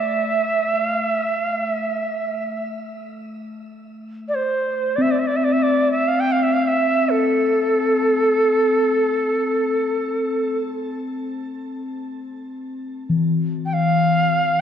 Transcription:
0, 0, Header, 1, 3, 480
1, 0, Start_track
1, 0, Key_signature, 0, "minor"
1, 0, Tempo, 500000
1, 14028, End_track
2, 0, Start_track
2, 0, Title_t, "Native American-style wooden flute"
2, 0, Program_c, 0, 77
2, 0, Note_on_c, 0, 76, 77
2, 788, Note_off_c, 0, 76, 0
2, 788, Note_on_c, 0, 77, 77
2, 999, Note_off_c, 0, 77, 0
2, 999, Note_on_c, 0, 76, 77
2, 1345, Note_off_c, 0, 76, 0
2, 1345, Note_on_c, 0, 77, 77
2, 1556, Note_off_c, 0, 77, 0
2, 1556, Note_on_c, 0, 76, 77
2, 2558, Note_off_c, 0, 76, 0
2, 4113, Note_on_c, 0, 74, 52
2, 4172, Note_on_c, 0, 72, 70
2, 4187, Note_off_c, 0, 74, 0
2, 4760, Note_on_c, 0, 74, 70
2, 4775, Note_off_c, 0, 72, 0
2, 4816, Note_on_c, 0, 76, 75
2, 4831, Note_off_c, 0, 74, 0
2, 4906, Note_on_c, 0, 74, 71
2, 4920, Note_off_c, 0, 76, 0
2, 4987, Note_on_c, 0, 76, 62
2, 5001, Note_off_c, 0, 74, 0
2, 5059, Note_on_c, 0, 74, 65
2, 5073, Note_off_c, 0, 76, 0
2, 5148, Note_on_c, 0, 76, 64
2, 5162, Note_off_c, 0, 74, 0
2, 5224, Note_on_c, 0, 74, 64
2, 5239, Note_off_c, 0, 76, 0
2, 5304, Note_on_c, 0, 76, 68
2, 5319, Note_off_c, 0, 74, 0
2, 5401, Note_on_c, 0, 74, 81
2, 5416, Note_off_c, 0, 76, 0
2, 5673, Note_off_c, 0, 74, 0
2, 5679, Note_on_c, 0, 76, 76
2, 5834, Note_on_c, 0, 77, 76
2, 5849, Note_off_c, 0, 76, 0
2, 5952, Note_on_c, 0, 79, 82
2, 5966, Note_off_c, 0, 77, 0
2, 6066, Note_on_c, 0, 77, 73
2, 6080, Note_off_c, 0, 79, 0
2, 6171, Note_on_c, 0, 76, 75
2, 6186, Note_off_c, 0, 77, 0
2, 6267, Note_on_c, 0, 77, 81
2, 6282, Note_off_c, 0, 76, 0
2, 6408, Note_on_c, 0, 76, 75
2, 6422, Note_off_c, 0, 77, 0
2, 6815, Note_on_c, 0, 69, 80
2, 6829, Note_off_c, 0, 76, 0
2, 10170, Note_off_c, 0, 69, 0
2, 13114, Note_on_c, 0, 79, 53
2, 13187, Note_on_c, 0, 77, 88
2, 13201, Note_off_c, 0, 79, 0
2, 14028, Note_off_c, 0, 77, 0
2, 14028, End_track
3, 0, Start_track
3, 0, Title_t, "Singing bowl"
3, 0, Program_c, 1, 14
3, 0, Note_on_c, 1, 57, 51
3, 3124, Note_off_c, 1, 57, 0
3, 4784, Note_on_c, 1, 60, 63
3, 12574, Note_on_c, 1, 52, 63
3, 12806, Note_off_c, 1, 60, 0
3, 14028, Note_off_c, 1, 52, 0
3, 14028, End_track
0, 0, End_of_file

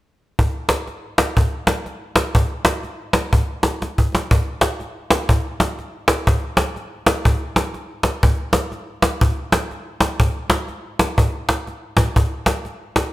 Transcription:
0, 0, Header, 1, 2, 480
1, 0, Start_track
1, 0, Tempo, 490597
1, 379, Time_signature, 4, 2, 24, 8
1, 12844, End_track
2, 0, Start_track
2, 0, Title_t, "Cajon"
2, 381, Note_on_c, 9, 36, 102
2, 478, Note_off_c, 9, 36, 0
2, 672, Note_on_c, 9, 38, 102
2, 770, Note_off_c, 9, 38, 0
2, 856, Note_on_c, 9, 38, 43
2, 954, Note_off_c, 9, 38, 0
2, 1156, Note_on_c, 9, 38, 93
2, 1253, Note_off_c, 9, 38, 0
2, 1338, Note_on_c, 9, 36, 101
2, 1436, Note_off_c, 9, 36, 0
2, 1634, Note_on_c, 9, 38, 88
2, 1732, Note_off_c, 9, 38, 0
2, 1821, Note_on_c, 9, 38, 45
2, 1919, Note_off_c, 9, 38, 0
2, 2109, Note_on_c, 9, 38, 94
2, 2207, Note_off_c, 9, 38, 0
2, 2298, Note_on_c, 9, 36, 99
2, 2396, Note_off_c, 9, 36, 0
2, 2590, Note_on_c, 9, 38, 104
2, 2688, Note_off_c, 9, 38, 0
2, 2772, Note_on_c, 9, 38, 40
2, 2870, Note_off_c, 9, 38, 0
2, 3066, Note_on_c, 9, 38, 99
2, 3164, Note_off_c, 9, 38, 0
2, 3255, Note_on_c, 9, 36, 93
2, 3353, Note_off_c, 9, 36, 0
2, 3552, Note_on_c, 9, 38, 94
2, 3650, Note_off_c, 9, 38, 0
2, 3738, Note_on_c, 9, 38, 48
2, 3836, Note_off_c, 9, 38, 0
2, 3897, Note_on_c, 9, 36, 70
2, 3995, Note_off_c, 9, 36, 0
2, 4033, Note_on_c, 9, 38, 34
2, 4057, Note_off_c, 9, 38, 0
2, 4057, Note_on_c, 9, 38, 84
2, 4155, Note_off_c, 9, 38, 0
2, 4217, Note_on_c, 9, 36, 105
2, 4315, Note_off_c, 9, 36, 0
2, 4513, Note_on_c, 9, 38, 97
2, 4611, Note_off_c, 9, 38, 0
2, 4696, Note_on_c, 9, 38, 38
2, 4794, Note_off_c, 9, 38, 0
2, 4995, Note_on_c, 9, 38, 104
2, 5093, Note_off_c, 9, 38, 0
2, 5176, Note_on_c, 9, 36, 96
2, 5274, Note_off_c, 9, 36, 0
2, 5479, Note_on_c, 9, 38, 89
2, 5577, Note_off_c, 9, 38, 0
2, 5662, Note_on_c, 9, 38, 46
2, 5760, Note_off_c, 9, 38, 0
2, 5947, Note_on_c, 9, 38, 96
2, 6045, Note_off_c, 9, 38, 0
2, 6136, Note_on_c, 9, 36, 106
2, 6234, Note_off_c, 9, 36, 0
2, 6428, Note_on_c, 9, 38, 108
2, 6526, Note_off_c, 9, 38, 0
2, 6614, Note_on_c, 9, 38, 39
2, 6712, Note_off_c, 9, 38, 0
2, 6912, Note_on_c, 9, 38, 106
2, 7010, Note_off_c, 9, 38, 0
2, 7097, Note_on_c, 9, 36, 98
2, 7194, Note_off_c, 9, 36, 0
2, 7398, Note_on_c, 9, 38, 90
2, 7496, Note_off_c, 9, 38, 0
2, 7575, Note_on_c, 9, 38, 45
2, 7673, Note_off_c, 9, 38, 0
2, 7860, Note_on_c, 9, 38, 90
2, 7958, Note_off_c, 9, 38, 0
2, 8053, Note_on_c, 9, 36, 108
2, 8151, Note_off_c, 9, 36, 0
2, 8344, Note_on_c, 9, 38, 98
2, 8442, Note_off_c, 9, 38, 0
2, 8529, Note_on_c, 9, 38, 39
2, 8627, Note_off_c, 9, 38, 0
2, 8829, Note_on_c, 9, 38, 95
2, 8927, Note_off_c, 9, 38, 0
2, 9014, Note_on_c, 9, 36, 98
2, 9112, Note_off_c, 9, 36, 0
2, 9318, Note_on_c, 9, 38, 93
2, 9416, Note_off_c, 9, 38, 0
2, 9502, Note_on_c, 9, 38, 45
2, 9600, Note_off_c, 9, 38, 0
2, 9789, Note_on_c, 9, 38, 89
2, 9887, Note_off_c, 9, 38, 0
2, 9976, Note_on_c, 9, 36, 105
2, 10074, Note_off_c, 9, 36, 0
2, 10270, Note_on_c, 9, 38, 109
2, 10368, Note_off_c, 9, 38, 0
2, 10451, Note_on_c, 9, 38, 41
2, 10549, Note_off_c, 9, 38, 0
2, 10757, Note_on_c, 9, 38, 99
2, 10855, Note_off_c, 9, 38, 0
2, 10937, Note_on_c, 9, 36, 94
2, 11035, Note_off_c, 9, 36, 0
2, 11238, Note_on_c, 9, 38, 85
2, 11336, Note_off_c, 9, 38, 0
2, 11421, Note_on_c, 9, 38, 44
2, 11519, Note_off_c, 9, 38, 0
2, 11708, Note_on_c, 9, 38, 94
2, 11715, Note_on_c, 9, 36, 77
2, 11806, Note_off_c, 9, 38, 0
2, 11813, Note_off_c, 9, 36, 0
2, 11899, Note_on_c, 9, 36, 95
2, 11997, Note_off_c, 9, 36, 0
2, 12193, Note_on_c, 9, 38, 94
2, 12290, Note_off_c, 9, 38, 0
2, 12376, Note_on_c, 9, 38, 44
2, 12474, Note_off_c, 9, 38, 0
2, 12679, Note_on_c, 9, 38, 104
2, 12777, Note_off_c, 9, 38, 0
2, 12844, End_track
0, 0, End_of_file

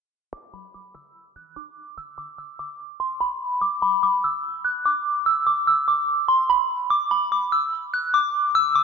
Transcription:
0, 0, Header, 1, 2, 480
1, 0, Start_track
1, 0, Tempo, 410959
1, 385, Time_signature, 4, 2, 24, 8
1, 10320, End_track
2, 0, Start_track
2, 0, Title_t, "Synth bell"
2, 0, Program_c, 0, 98
2, 384, Note_on_c, 0, 86, 103
2, 602, Note_off_c, 0, 86, 0
2, 626, Note_on_c, 0, 83, 75
2, 844, Note_off_c, 0, 83, 0
2, 869, Note_on_c, 0, 86, 75
2, 1085, Note_off_c, 0, 86, 0
2, 1106, Note_on_c, 0, 88, 81
2, 1324, Note_off_c, 0, 88, 0
2, 1589, Note_on_c, 0, 90, 80
2, 1805, Note_off_c, 0, 90, 0
2, 1826, Note_on_c, 0, 86, 83
2, 2277, Note_off_c, 0, 86, 0
2, 2307, Note_on_c, 0, 88, 103
2, 2525, Note_off_c, 0, 88, 0
2, 2544, Note_on_c, 0, 86, 77
2, 2763, Note_off_c, 0, 86, 0
2, 2784, Note_on_c, 0, 88, 78
2, 3003, Note_off_c, 0, 88, 0
2, 3028, Note_on_c, 0, 86, 78
2, 3245, Note_off_c, 0, 86, 0
2, 3503, Note_on_c, 0, 84, 80
2, 3722, Note_off_c, 0, 84, 0
2, 3743, Note_on_c, 0, 83, 85
2, 4196, Note_off_c, 0, 83, 0
2, 4222, Note_on_c, 0, 86, 97
2, 4441, Note_off_c, 0, 86, 0
2, 4465, Note_on_c, 0, 83, 83
2, 4683, Note_off_c, 0, 83, 0
2, 4706, Note_on_c, 0, 86, 73
2, 4924, Note_off_c, 0, 86, 0
2, 4952, Note_on_c, 0, 88, 73
2, 5167, Note_off_c, 0, 88, 0
2, 5426, Note_on_c, 0, 90, 84
2, 5644, Note_off_c, 0, 90, 0
2, 5671, Note_on_c, 0, 86, 81
2, 6120, Note_off_c, 0, 86, 0
2, 6145, Note_on_c, 0, 88, 97
2, 6363, Note_off_c, 0, 88, 0
2, 6383, Note_on_c, 0, 86, 74
2, 6602, Note_off_c, 0, 86, 0
2, 6627, Note_on_c, 0, 88, 85
2, 6844, Note_off_c, 0, 88, 0
2, 6866, Note_on_c, 0, 86, 66
2, 7084, Note_off_c, 0, 86, 0
2, 7340, Note_on_c, 0, 84, 83
2, 7560, Note_off_c, 0, 84, 0
2, 7587, Note_on_c, 0, 83, 76
2, 7804, Note_off_c, 0, 83, 0
2, 8063, Note_on_c, 0, 86, 108
2, 8282, Note_off_c, 0, 86, 0
2, 8305, Note_on_c, 0, 83, 73
2, 8523, Note_off_c, 0, 83, 0
2, 8549, Note_on_c, 0, 86, 78
2, 8765, Note_off_c, 0, 86, 0
2, 8786, Note_on_c, 0, 88, 79
2, 9004, Note_off_c, 0, 88, 0
2, 9269, Note_on_c, 0, 90, 77
2, 9485, Note_off_c, 0, 90, 0
2, 9506, Note_on_c, 0, 86, 81
2, 9957, Note_off_c, 0, 86, 0
2, 9987, Note_on_c, 0, 88, 105
2, 10204, Note_off_c, 0, 88, 0
2, 10225, Note_on_c, 0, 86, 76
2, 10320, Note_off_c, 0, 86, 0
2, 10320, End_track
0, 0, End_of_file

